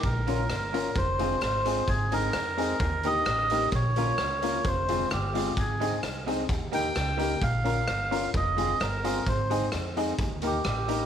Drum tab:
HH |xxxxxxxx|xxxxxxxx|xxxxxxxx|xxxxxxxx|
SD |--r---r-|--r---r-|--r---r-|--r---r-|
BD |o---o---|o---o---|o---o---|o---o---|

HH |xxxxxxxx|xxxxxxxx|
SD |--r---r-|--r---r-|
BD |o---o---|o---o---|